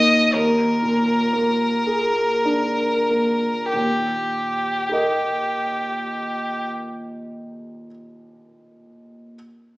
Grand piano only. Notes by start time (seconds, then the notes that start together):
Already playing: D#2 A#2 A#3 D#4 A#4
0.34 D#2
0.83 A#2
1.33 A#3
1.86 G#4
2.45 D4
3.10 A#3
3.73 D#2 A#2
4.89 G4 A#4
4.93 D#5